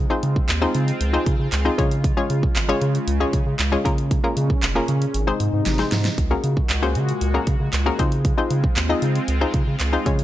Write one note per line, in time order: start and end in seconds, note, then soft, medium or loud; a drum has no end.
0.00 6.14 G#3 medium
0.00 1.76 C4 medium
0.00 3.81 F4 medium
0.10 0.48 C4 medium
0.10 0.48 D#4 medium
0.10 0.48 F4 medium
0.10 0.48 G#4 medium
0.10 0.48 C5 loud
0.23 0.40 C#3 loud
0.23 closed hi-hat medium
0.36 kick loud
0.49 0.66 D#2 loud
0.49 clap medium
0.49 clap loud
0.49 closed hi-hat loud
0.62 0.99 C4 loud
0.62 0.99 D#4 medium
0.62 0.99 F4 medium
0.62 0.99 G#4 medium
0.62 1.00 C5 loud
0.75 0.92 C#3 loud
0.75 closed hi-hat medium
0.88 closed hi-hat medium
1.01 1.18 C#2 loud
1.01 closed hi-hat loud
1.13 1.51 C4 loud
1.13 1.51 D#4 medium
1.13 1.51 F4 medium
1.13 1.51 G#4 medium
1.13 1.51 C5 loud
1.26 1.35 C#3 loud
1.26 kick loud
1.26 closed hi-hat medium
1.39 1.48 C#3 medium
1.52 1.69 C#2 loud
1.52 clap loud
1.52 clap medium
1.52 closed hi-hat loud
1.65 1.78 C4 loud
1.65 1.78 D#4 medium
1.65 1.77 F4 medium
1.65 1.77 G#4 medium
1.65 1.78 C5 loud
1.78 3.83 C#3 medium
1.78 2.12 C#3 loud
1.78 2.09 G#3 loud
1.78 2.09 C#4 medium
1.78 2.09 F4 medium
1.78 2.09 G#4 medium
1.78 2.09 C#5 loud
1.78 kick loud
1.78 closed hi-hat medium
1.91 closed hi-hat medium
2.04 kick loud
2.04 closed hi-hat loud
2.17 2.55 G#3 medium
2.17 2.55 C#4 medium
2.17 2.55 F4 medium
2.17 2.55 G#4 medium
2.17 2.55 C#5 loud
2.30 2.47 C#3 loud
2.30 closed hi-hat medium
2.43 kick medium
2.56 2.73 G#1 loud
2.56 clap medium
2.56 clap loud
2.56 closed hi-hat loud
2.69 3.06 G#3 loud
2.69 3.06 C#4 loud
2.69 3.06 F4 loud
2.69 3.06 G#4 loud
2.69 3.07 C#5 loud
2.82 2.99 C#3 loud
2.82 closed hi-hat medium
2.95 closed hi-hat medium
3.08 3.24 C#2 loud
3.08 closed hi-hat loud
3.20 3.58 G#3 loud
3.20 3.58 C#4 loud
3.20 3.58 F4 medium
3.20 3.58 G#4 medium
3.20 3.58 C#5 loud
3.33 3.42 C#3 loud
3.33 kick loud
3.33 closed hi-hat medium
3.46 3.55 C#3 loud
3.59 3.76 C#2 loud
3.59 clap loud
3.59 clap medium
3.59 closed hi-hat medium
3.72 3.85 G#3 loud
3.72 3.84 C#4 medium
3.72 3.84 F4 loud
3.72 3.84 G#4 loud
3.72 3.85 C#5 loud
3.85 5.13 A#2 medium
3.85 4.19 C#3 medium
3.85 4.16 A#3 loud
3.85 4.16 C#4 medium
3.85 5.13 C#4 medium
3.85 4.16 F4 medium
3.85 4.16 G#4 medium
3.85 4.16 A#4 loud
3.85 kick medium
3.85 closed hi-hat medium
3.98 closed hi-hat medium
4.11 kick loud
4.11 closed hi-hat loud
4.24 4.61 A#3 medium
4.24 4.61 C#4 medium
4.24 4.61 F4 medium
4.24 4.62 G#4 medium
4.24 4.62 A#4 loud
4.37 4.54 C#3 loud
4.37 closed hi-hat medium
4.50 kick medium
4.63 4.80 F1 loud
4.63 clap loud
4.63 clap medium
4.63 closed hi-hat loud
4.75 5.13 A#3 loud
4.75 5.13 C#4 loud
4.75 5.13 F4 medium
4.75 5.13 G#4 medium
4.75 5.13 A#4 loud
4.88 5.05 C#3 loud
4.88 closed hi-hat medium
5.02 closed hi-hat medium
5.14 5.31 G#1 loud
5.14 6.17 C3 medium
5.14 6.17 D#4 medium
5.14 closed hi-hat loud
5.27 5.65 G#3 loud
5.27 5.65 C4 medium
5.27 5.65 D#4 medium
5.27 5.65 G#4 medium
5.27 5.65 C5 loud
5.40 5.49 G#2 loud
5.40 closed hi-hat medium
5.53 5.62 G#2 loud
5.66 5.83 G#1 loud
5.66 snare medium
5.66 clap medium
5.66 closed hi-hat medium
5.79 6.17 G#3 loud
5.79 6.17 C4 medium
5.79 6.17 D#4 medium
5.79 6.17 G#4 medium
5.79 6.17 C5 loud
5.79 snare medium
5.92 6.09 G#2 loud
5.92 snare loud
5.92 open hi-hat medium
6.05 snare loud
6.18 6.35 C#2 loud
6.18 7.97 A#2 medium
6.18 7.97 G#3 medium
6.18 7.97 F#4 medium
6.18 kick loud
6.18 closed hi-hat loud
6.31 6.68 A#3 medium
6.31 6.68 C#4 medium
6.31 6.68 F#4 medium
6.31 6.68 G#4 medium
6.31 6.68 A#4 loud
6.44 6.61 C#3 loud
6.44 closed hi-hat medium
6.57 kick loud
6.70 6.97 C#2 loud
6.70 clap medium
6.70 clap loud
6.70 closed hi-hat medium
6.82 7.20 A#3 loud
6.82 7.20 C#4 medium
6.82 7.20 F#4 medium
6.82 7.20 G#4 loud
6.82 7.20 C5 loud
6.95 7.12 C#3 loud
6.95 closed hi-hat medium
7.09 closed hi-hat medium
7.21 7.38 C#2 loud
7.21 closed hi-hat loud
7.34 7.72 A#3 loud
7.34 7.72 C#4 medium
7.34 7.72 F#4 medium
7.34 7.72 G#4 medium
7.34 7.72 A#4 loud
7.47 7.56 C#3 loud
7.47 kick loud
7.47 closed hi-hat medium
7.60 7.69 C#3 medium
7.73 7.90 C#2 loud
7.73 clap loud
7.73 clap medium
7.73 closed hi-hat loud
7.86 7.99 A#3 loud
7.86 7.99 C#4 medium
7.86 7.99 F#4 medium
7.86 7.98 G#4 medium
7.86 7.99 A#4 loud
7.99 8.33 C#3 loud
7.99 10.24 G#3 medium
7.99 8.30 C4 loud
7.99 10.04 C4 medium
7.99 8.30 D#4 medium
7.99 8.30 F4 medium
7.99 10.24 F4 medium
7.99 8.30 G#4 medium
7.99 8.30 C5 loud
7.99 kick medium
7.99 closed hi-hat medium
8.12 closed hi-hat medium
8.25 kick loud
8.25 closed hi-hat loud
8.38 8.75 C4 medium
8.38 8.75 D#4 medium
8.38 8.75 F4 medium
8.38 8.75 G#4 medium
8.38 8.75 C5 loud
8.51 8.67 C#3 loud
8.51 closed hi-hat medium
8.64 kick medium
8.76 8.93 D#2 medium
8.76 clap medium
8.76 clap loud
8.76 closed hi-hat loud
8.89 9.27 C4 medium
8.89 9.27 D#4 medium
8.89 9.27 F4 medium
8.89 9.27 G#4 medium
8.89 9.27 D#5 loud
9.02 9.19 C#3 loud
9.02 closed hi-hat medium
9.15 closed hi-hat medium
9.28 9.45 C#2 loud
9.28 closed hi-hat loud
9.41 9.79 C4 medium
9.41 9.79 D#4 medium
9.41 9.79 F4 medium
9.41 9.79 G#4 medium
9.41 9.79 C5 loud
9.54 9.62 C#3 loud
9.54 kick loud
9.54 closed hi-hat medium
9.67 9.76 C#3 loud
9.80 9.97 C#2 loud
9.80 clap loud
9.80 clap medium
9.80 closed hi-hat medium
9.93 10.06 C4 medium
9.93 10.06 D#4 medium
9.93 10.05 F4 medium
9.93 10.05 G#4 medium
9.93 10.06 C5 loud
10.06 10.24 C#3 medium
10.06 10.24 C#3 loud
10.06 10.24 G#3 loud
10.06 10.24 C#4 medium
10.06 10.24 F4 medium
10.06 10.24 G#4 medium
10.06 10.24 C#5 loud
10.06 kick medium
10.06 closed hi-hat medium
10.19 closed hi-hat medium